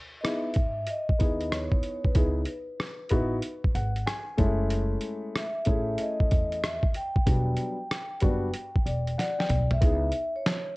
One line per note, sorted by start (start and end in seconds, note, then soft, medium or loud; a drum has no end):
0.21 0.49 B3 medium
0.21 0.49 D#4 medium
0.21 0.49 E4 medium
0.21 0.25 D#5 medium
0.21 cross-stick medium
0.21 closed hi-hat medium
0.25 0.50 G#4 medium
0.25 0.91 E5 loud
0.54 0.84 G#2 medium
0.54 kick medium
0.54 closed hi-hat medium
0.87 1.55 D#5 medium
0.87 closed hi-hat medium
1.09 kick medium
1.19 1.66 D#2 medium
1.19 2.11 B3 medium
1.19 2.11 D#4 medium
1.19 2.11 E4 medium
1.19 2.11 G#4 medium
1.19 kick loud
1.19 closed hi-hat medium
1.40 closed hi-hat soft
1.52 2.07 C#5 medium
1.52 cross-stick medium
1.52 closed hi-hat medium
1.71 kick medium
1.83 closed hi-hat medium
2.04 3.92 B4 medium
2.04 kick medium
2.15 2.43 C#2 medium
2.15 2.40 B3 medium
2.15 2.41 D#4 medium
2.15 2.41 E4 medium
2.15 2.41 G#4 medium
2.15 kick loud
2.15 closed hi-hat medium
2.45 closed hi-hat medium
2.80 cross-stick medium
2.80 closed hi-hat medium
3.09 3.39 A1 medium
3.09 3.36 B3 medium
3.09 3.36 D#4 medium
3.09 3.37 E4 medium
3.09 3.37 F#4 medium
3.09 kick medium
3.09 closed hi-hat medium
3.42 closed hi-hat medium
3.65 kick medium
3.75 4.03 G#1 medium
3.75 4.05 F#5 medium
3.75 closed hi-hat medium
3.96 closed hi-hat soft
4.07 4.37 G#5 medium
4.07 cross-stick loud
4.07 closed hi-hat medium
4.38 4.95 F#1 loud
4.38 5.43 G#3 medium
4.38 5.42 A3 medium
4.38 5.43 C#4 medium
4.38 5.43 E4 medium
4.38 4.68 A5 medium
4.38 kick loud
4.38 closed hi-hat medium
4.71 closed hi-hat loud
5.01 closed hi-hat medium
5.36 6.02 E5 medium
5.36 cross-stick loud
5.36 closed hi-hat medium
5.65 5.95 A1 medium
5.65 6.58 A3 medium
5.65 6.58 C#4 medium
5.65 6.58 E4 medium
5.65 6.58 G#4 medium
5.65 kick medium
5.65 closed hi-hat medium
5.98 6.60 D#5 medium
5.98 closed hi-hat medium
6.20 kick medium
6.31 6.77 E2 medium
6.31 kick medium
6.31 closed hi-hat medium
6.52 closed hi-hat soft
6.64 6.78 E5 medium
6.64 cross-stick loud
6.64 closed hi-hat medium
6.83 kick medium
6.94 9.15 G5 medium
6.94 closed hi-hat medium
7.16 kick medium
7.26 7.54 E1 loud
7.26 7.75 F#3 medium
7.26 7.74 G3 medium
7.26 7.75 B3 medium
7.26 7.75 D4 medium
7.26 kick loud
7.26 closed hi-hat medium
7.57 closed hi-hat medium
7.91 cross-stick medium
7.91 closed hi-hat medium
8.20 8.50 F#1 medium
8.20 8.47 G3 medium
8.20 8.47 B3 medium
8.20 8.47 D4 medium
8.20 8.48 F#4 medium
8.20 kick medium
8.20 closed hi-hat medium
8.54 closed hi-hat medium
8.76 kick medium
8.86 9.14 E1 medium
8.86 9.15 D5 medium
8.86 closed hi-hat medium
9.07 closed hi-hat soft
9.18 9.68 D5 medium
9.18 9.37 F#5 medium
9.18 snare soft
9.18 closed hi-hat medium
9.39 9.79 G5 medium
9.39 snare medium
9.50 9.77 B1 medium
9.50 closed hi-hat medium
9.50 mid tom medium
9.71 10.31 E5 loud
9.71 floor tom medium
9.81 10.10 C#2 loud
9.81 10.06 B3 medium
9.81 10.07 D#4 medium
9.81 10.07 E4 medium
9.81 10.07 G#4 medium
9.81 kick loud
9.81 closed hi-hat loud
10.12 closed hi-hat medium
10.36 10.77 C#5 medium
10.46 snare medium
10.46 closed hi-hat medium